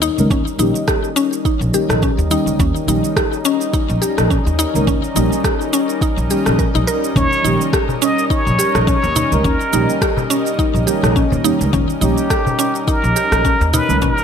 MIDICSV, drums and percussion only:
0, 0, Header, 1, 3, 480
1, 0, Start_track
1, 0, Tempo, 571429
1, 257, Time_signature, 4, 2, 24, 8
1, 11961, End_track
2, 0, Start_track
2, 0, Title_t, "Darbuka"
2, 6012, Note_on_c, 9, 64, 89
2, 6096, Note_off_c, 9, 64, 0
2, 6624, Note_on_c, 9, 64, 86
2, 6708, Note_off_c, 9, 64, 0
2, 7218, Note_on_c, 9, 62, 46
2, 7302, Note_off_c, 9, 62, 0
2, 7583, Note_on_c, 9, 63, 57
2, 7667, Note_off_c, 9, 63, 0
2, 7698, Note_on_c, 9, 64, 87
2, 7782, Note_off_c, 9, 64, 0
2, 7828, Note_on_c, 9, 62, 41
2, 7912, Note_off_c, 9, 62, 0
2, 8544, Note_on_c, 9, 64, 92
2, 8549, Note_on_c, 9, 63, 65
2, 8628, Note_off_c, 9, 64, 0
2, 8633, Note_off_c, 9, 63, 0
2, 9506, Note_on_c, 9, 64, 94
2, 9590, Note_off_c, 9, 64, 0
2, 9752, Note_on_c, 9, 62, 53
2, 9836, Note_off_c, 9, 62, 0
2, 9857, Note_on_c, 9, 64, 75
2, 9941, Note_off_c, 9, 64, 0
2, 10472, Note_on_c, 9, 64, 92
2, 10556, Note_off_c, 9, 64, 0
2, 11058, Note_on_c, 9, 62, 53
2, 11142, Note_off_c, 9, 62, 0
2, 11436, Note_on_c, 9, 63, 58
2, 11520, Note_off_c, 9, 63, 0
2, 11539, Note_on_c, 9, 64, 94
2, 11623, Note_off_c, 9, 64, 0
2, 11675, Note_on_c, 9, 62, 51
2, 11759, Note_off_c, 9, 62, 0
2, 11777, Note_on_c, 9, 64, 91
2, 11861, Note_off_c, 9, 64, 0
2, 11915, Note_on_c, 9, 62, 35
2, 11961, Note_off_c, 9, 62, 0
2, 11961, End_track
3, 0, Start_track
3, 0, Title_t, "Drums"
3, 19, Note_on_c, 9, 82, 82
3, 103, Note_off_c, 9, 82, 0
3, 155, Note_on_c, 9, 82, 34
3, 239, Note_off_c, 9, 82, 0
3, 257, Note_on_c, 9, 36, 99
3, 259, Note_on_c, 9, 82, 43
3, 341, Note_off_c, 9, 36, 0
3, 343, Note_off_c, 9, 82, 0
3, 396, Note_on_c, 9, 82, 25
3, 480, Note_off_c, 9, 82, 0
3, 498, Note_on_c, 9, 82, 82
3, 582, Note_off_c, 9, 82, 0
3, 635, Note_on_c, 9, 82, 32
3, 719, Note_off_c, 9, 82, 0
3, 737, Note_on_c, 9, 37, 80
3, 738, Note_on_c, 9, 36, 106
3, 739, Note_on_c, 9, 82, 47
3, 821, Note_off_c, 9, 37, 0
3, 822, Note_off_c, 9, 36, 0
3, 823, Note_off_c, 9, 82, 0
3, 874, Note_on_c, 9, 82, 23
3, 958, Note_off_c, 9, 82, 0
3, 979, Note_on_c, 9, 82, 79
3, 1063, Note_off_c, 9, 82, 0
3, 1116, Note_on_c, 9, 82, 33
3, 1200, Note_off_c, 9, 82, 0
3, 1219, Note_on_c, 9, 36, 102
3, 1222, Note_on_c, 9, 82, 41
3, 1303, Note_off_c, 9, 36, 0
3, 1306, Note_off_c, 9, 82, 0
3, 1357, Note_on_c, 9, 82, 23
3, 1441, Note_off_c, 9, 82, 0
3, 1461, Note_on_c, 9, 82, 78
3, 1545, Note_off_c, 9, 82, 0
3, 1595, Note_on_c, 9, 37, 82
3, 1598, Note_on_c, 9, 82, 32
3, 1679, Note_off_c, 9, 37, 0
3, 1682, Note_off_c, 9, 82, 0
3, 1699, Note_on_c, 9, 36, 104
3, 1702, Note_on_c, 9, 82, 41
3, 1783, Note_off_c, 9, 36, 0
3, 1786, Note_off_c, 9, 82, 0
3, 1837, Note_on_c, 9, 82, 23
3, 1921, Note_off_c, 9, 82, 0
3, 1940, Note_on_c, 9, 82, 81
3, 2024, Note_off_c, 9, 82, 0
3, 2078, Note_on_c, 9, 82, 32
3, 2162, Note_off_c, 9, 82, 0
3, 2179, Note_on_c, 9, 36, 105
3, 2183, Note_on_c, 9, 82, 44
3, 2263, Note_off_c, 9, 36, 0
3, 2267, Note_off_c, 9, 82, 0
3, 2317, Note_on_c, 9, 82, 24
3, 2401, Note_off_c, 9, 82, 0
3, 2423, Note_on_c, 9, 82, 82
3, 2507, Note_off_c, 9, 82, 0
3, 2556, Note_on_c, 9, 82, 33
3, 2640, Note_off_c, 9, 82, 0
3, 2658, Note_on_c, 9, 36, 99
3, 2659, Note_on_c, 9, 37, 84
3, 2662, Note_on_c, 9, 82, 47
3, 2742, Note_off_c, 9, 36, 0
3, 2743, Note_off_c, 9, 37, 0
3, 2746, Note_off_c, 9, 82, 0
3, 2796, Note_on_c, 9, 82, 22
3, 2880, Note_off_c, 9, 82, 0
3, 2898, Note_on_c, 9, 82, 83
3, 2982, Note_off_c, 9, 82, 0
3, 3033, Note_on_c, 9, 82, 35
3, 3117, Note_off_c, 9, 82, 0
3, 3137, Note_on_c, 9, 36, 104
3, 3139, Note_on_c, 9, 82, 42
3, 3221, Note_off_c, 9, 36, 0
3, 3223, Note_off_c, 9, 82, 0
3, 3272, Note_on_c, 9, 82, 26
3, 3356, Note_off_c, 9, 82, 0
3, 3380, Note_on_c, 9, 82, 81
3, 3464, Note_off_c, 9, 82, 0
3, 3512, Note_on_c, 9, 37, 78
3, 3514, Note_on_c, 9, 82, 33
3, 3596, Note_off_c, 9, 37, 0
3, 3598, Note_off_c, 9, 82, 0
3, 3615, Note_on_c, 9, 36, 106
3, 3620, Note_on_c, 9, 82, 44
3, 3699, Note_off_c, 9, 36, 0
3, 3704, Note_off_c, 9, 82, 0
3, 3754, Note_on_c, 9, 82, 22
3, 3838, Note_off_c, 9, 82, 0
3, 3857, Note_on_c, 9, 82, 83
3, 3941, Note_off_c, 9, 82, 0
3, 3994, Note_on_c, 9, 82, 35
3, 4078, Note_off_c, 9, 82, 0
3, 4093, Note_on_c, 9, 36, 101
3, 4097, Note_on_c, 9, 82, 43
3, 4177, Note_off_c, 9, 36, 0
3, 4181, Note_off_c, 9, 82, 0
3, 4232, Note_on_c, 9, 82, 24
3, 4316, Note_off_c, 9, 82, 0
3, 4336, Note_on_c, 9, 82, 80
3, 4420, Note_off_c, 9, 82, 0
3, 4472, Note_on_c, 9, 82, 34
3, 4556, Note_off_c, 9, 82, 0
3, 4572, Note_on_c, 9, 36, 106
3, 4573, Note_on_c, 9, 37, 77
3, 4576, Note_on_c, 9, 82, 48
3, 4656, Note_off_c, 9, 36, 0
3, 4657, Note_off_c, 9, 37, 0
3, 4660, Note_off_c, 9, 82, 0
3, 4712, Note_on_c, 9, 82, 22
3, 4796, Note_off_c, 9, 82, 0
3, 4816, Note_on_c, 9, 82, 76
3, 4900, Note_off_c, 9, 82, 0
3, 4952, Note_on_c, 9, 82, 36
3, 5036, Note_off_c, 9, 82, 0
3, 5052, Note_on_c, 9, 36, 108
3, 5057, Note_on_c, 9, 82, 44
3, 5136, Note_off_c, 9, 36, 0
3, 5141, Note_off_c, 9, 82, 0
3, 5190, Note_on_c, 9, 82, 24
3, 5274, Note_off_c, 9, 82, 0
3, 5296, Note_on_c, 9, 82, 76
3, 5380, Note_off_c, 9, 82, 0
3, 5428, Note_on_c, 9, 37, 75
3, 5430, Note_on_c, 9, 82, 34
3, 5512, Note_off_c, 9, 37, 0
3, 5514, Note_off_c, 9, 82, 0
3, 5533, Note_on_c, 9, 36, 102
3, 5536, Note_on_c, 9, 82, 46
3, 5617, Note_off_c, 9, 36, 0
3, 5620, Note_off_c, 9, 82, 0
3, 5672, Note_on_c, 9, 82, 23
3, 5756, Note_off_c, 9, 82, 0
3, 5778, Note_on_c, 9, 82, 84
3, 5862, Note_off_c, 9, 82, 0
3, 5915, Note_on_c, 9, 82, 35
3, 5999, Note_off_c, 9, 82, 0
3, 6013, Note_on_c, 9, 36, 100
3, 6020, Note_on_c, 9, 82, 41
3, 6097, Note_off_c, 9, 36, 0
3, 6104, Note_off_c, 9, 82, 0
3, 6155, Note_on_c, 9, 82, 24
3, 6239, Note_off_c, 9, 82, 0
3, 6260, Note_on_c, 9, 82, 75
3, 6344, Note_off_c, 9, 82, 0
3, 6394, Note_on_c, 9, 82, 35
3, 6478, Note_off_c, 9, 82, 0
3, 6493, Note_on_c, 9, 36, 106
3, 6497, Note_on_c, 9, 37, 75
3, 6499, Note_on_c, 9, 82, 48
3, 6577, Note_off_c, 9, 36, 0
3, 6581, Note_off_c, 9, 37, 0
3, 6583, Note_off_c, 9, 82, 0
3, 6633, Note_on_c, 9, 82, 21
3, 6717, Note_off_c, 9, 82, 0
3, 6738, Note_on_c, 9, 82, 76
3, 6822, Note_off_c, 9, 82, 0
3, 6876, Note_on_c, 9, 82, 33
3, 6960, Note_off_c, 9, 82, 0
3, 6974, Note_on_c, 9, 36, 105
3, 6981, Note_on_c, 9, 82, 44
3, 7058, Note_off_c, 9, 36, 0
3, 7065, Note_off_c, 9, 82, 0
3, 7115, Note_on_c, 9, 82, 24
3, 7199, Note_off_c, 9, 82, 0
3, 7219, Note_on_c, 9, 82, 79
3, 7303, Note_off_c, 9, 82, 0
3, 7350, Note_on_c, 9, 37, 75
3, 7352, Note_on_c, 9, 82, 33
3, 7434, Note_off_c, 9, 37, 0
3, 7436, Note_off_c, 9, 82, 0
3, 7454, Note_on_c, 9, 36, 105
3, 7458, Note_on_c, 9, 82, 41
3, 7538, Note_off_c, 9, 36, 0
3, 7542, Note_off_c, 9, 82, 0
3, 7592, Note_on_c, 9, 82, 21
3, 7676, Note_off_c, 9, 82, 0
3, 7695, Note_on_c, 9, 82, 75
3, 7779, Note_off_c, 9, 82, 0
3, 7831, Note_on_c, 9, 82, 33
3, 7915, Note_off_c, 9, 82, 0
3, 7933, Note_on_c, 9, 36, 93
3, 7936, Note_on_c, 9, 82, 43
3, 8017, Note_off_c, 9, 36, 0
3, 8020, Note_off_c, 9, 82, 0
3, 8070, Note_on_c, 9, 82, 23
3, 8154, Note_off_c, 9, 82, 0
3, 8174, Note_on_c, 9, 82, 79
3, 8258, Note_off_c, 9, 82, 0
3, 8311, Note_on_c, 9, 82, 31
3, 8395, Note_off_c, 9, 82, 0
3, 8414, Note_on_c, 9, 36, 106
3, 8414, Note_on_c, 9, 37, 78
3, 8417, Note_on_c, 9, 82, 43
3, 8498, Note_off_c, 9, 36, 0
3, 8498, Note_off_c, 9, 37, 0
3, 8501, Note_off_c, 9, 82, 0
3, 8552, Note_on_c, 9, 82, 22
3, 8636, Note_off_c, 9, 82, 0
3, 8657, Note_on_c, 9, 82, 80
3, 8741, Note_off_c, 9, 82, 0
3, 8790, Note_on_c, 9, 82, 35
3, 8874, Note_off_c, 9, 82, 0
3, 8893, Note_on_c, 9, 36, 98
3, 8897, Note_on_c, 9, 82, 39
3, 8977, Note_off_c, 9, 36, 0
3, 8981, Note_off_c, 9, 82, 0
3, 9033, Note_on_c, 9, 82, 22
3, 9117, Note_off_c, 9, 82, 0
3, 9137, Note_on_c, 9, 82, 73
3, 9221, Note_off_c, 9, 82, 0
3, 9271, Note_on_c, 9, 37, 74
3, 9273, Note_on_c, 9, 82, 31
3, 9355, Note_off_c, 9, 37, 0
3, 9357, Note_off_c, 9, 82, 0
3, 9373, Note_on_c, 9, 36, 105
3, 9377, Note_on_c, 9, 82, 41
3, 9457, Note_off_c, 9, 36, 0
3, 9461, Note_off_c, 9, 82, 0
3, 9513, Note_on_c, 9, 82, 23
3, 9597, Note_off_c, 9, 82, 0
3, 9617, Note_on_c, 9, 82, 73
3, 9701, Note_off_c, 9, 82, 0
3, 9753, Note_on_c, 9, 82, 35
3, 9837, Note_off_c, 9, 82, 0
3, 9854, Note_on_c, 9, 36, 91
3, 9857, Note_on_c, 9, 82, 43
3, 9938, Note_off_c, 9, 36, 0
3, 9941, Note_off_c, 9, 82, 0
3, 9993, Note_on_c, 9, 82, 22
3, 10077, Note_off_c, 9, 82, 0
3, 10095, Note_on_c, 9, 82, 76
3, 10179, Note_off_c, 9, 82, 0
3, 10229, Note_on_c, 9, 82, 33
3, 10313, Note_off_c, 9, 82, 0
3, 10334, Note_on_c, 9, 36, 105
3, 10335, Note_on_c, 9, 37, 78
3, 10337, Note_on_c, 9, 82, 46
3, 10418, Note_off_c, 9, 36, 0
3, 10419, Note_off_c, 9, 37, 0
3, 10421, Note_off_c, 9, 82, 0
3, 10473, Note_on_c, 9, 82, 21
3, 10557, Note_off_c, 9, 82, 0
3, 10578, Note_on_c, 9, 82, 72
3, 10662, Note_off_c, 9, 82, 0
3, 10713, Note_on_c, 9, 82, 33
3, 10797, Note_off_c, 9, 82, 0
3, 10815, Note_on_c, 9, 36, 102
3, 10817, Note_on_c, 9, 82, 40
3, 10899, Note_off_c, 9, 36, 0
3, 10901, Note_off_c, 9, 82, 0
3, 10954, Note_on_c, 9, 82, 23
3, 11038, Note_off_c, 9, 82, 0
3, 11057, Note_on_c, 9, 82, 75
3, 11141, Note_off_c, 9, 82, 0
3, 11190, Note_on_c, 9, 37, 79
3, 11193, Note_on_c, 9, 82, 32
3, 11274, Note_off_c, 9, 37, 0
3, 11277, Note_off_c, 9, 82, 0
3, 11296, Note_on_c, 9, 36, 98
3, 11297, Note_on_c, 9, 82, 40
3, 11380, Note_off_c, 9, 36, 0
3, 11381, Note_off_c, 9, 82, 0
3, 11434, Note_on_c, 9, 82, 21
3, 11518, Note_off_c, 9, 82, 0
3, 11539, Note_on_c, 9, 82, 78
3, 11623, Note_off_c, 9, 82, 0
3, 11672, Note_on_c, 9, 82, 32
3, 11756, Note_off_c, 9, 82, 0
3, 11776, Note_on_c, 9, 36, 96
3, 11776, Note_on_c, 9, 82, 38
3, 11860, Note_off_c, 9, 36, 0
3, 11860, Note_off_c, 9, 82, 0
3, 11911, Note_on_c, 9, 82, 23
3, 11961, Note_off_c, 9, 82, 0
3, 11961, End_track
0, 0, End_of_file